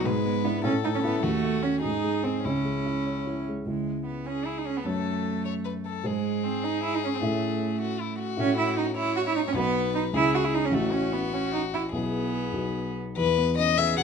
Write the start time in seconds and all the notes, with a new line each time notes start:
0.05 G#2 G#3 B4
0.25 B3
0.44 B3 D4 E4
0.63 A2 C#4 A4
0.84 A3 D#4
0.95 C#4
1.03 B3 C#4 E4
1.23 D#2 A3 F#4
1.43 A3
1.63 C#4 F#4
1.82 G#2 D#4 G#4
2.04 G#3
2.23 C4 D#4
2.45 C#2 C#4 E4
2.65 G#3
2.86 E4
3.07 C#5
3.27 E4
3.48 G#3
3.66 C#2 G#3 C#4 E4
4.06 B3
4.26 C#4 G#4
4.46 E4
4.58 D#4
4.67 C#4
4.77 B3
4.85 F#2 F#3 A3 C#4 A4 C#5
5.45 C#5
5.65 B4
5.86 A4
6.03 G#2 G#3 D#4 G#4 C5
6.44 C4
6.64 D#4
6.83 E4
6.95 D#4
7.04 C#4
7.15 C4
7.22 A2 A3 C#4 E4 E5
7.82 F#4
8.01 E4
8.19 F#4
8.37 A2 C#4 F#4 E5
8.58 E4
8.78 D#4
8.97 E4 C#5
9.17 F#4
9.27 E4
9.36 D#4
9.48 C#4
9.54 B1 B3 D#4 F#4 B4
9.95 D#4
10.13 C#2 C#4 E4 G#4
10.35 F#4
10.45 E4
10.54 D#4
10.65 C#4
10.71 A1 A3 C#4 E4 F#4
10.93 C#4
11.13 B3
11.33 C#4
11.53 D#4
11.74 E4
11.93 B1 B3 E4 G#4
12.53 B1 B3 D#4 F#4
13.17 E2 B4
13.38 B3
13.58 C#4 D#5
13.77 B3 G#4 E5
13.97 B2 F#5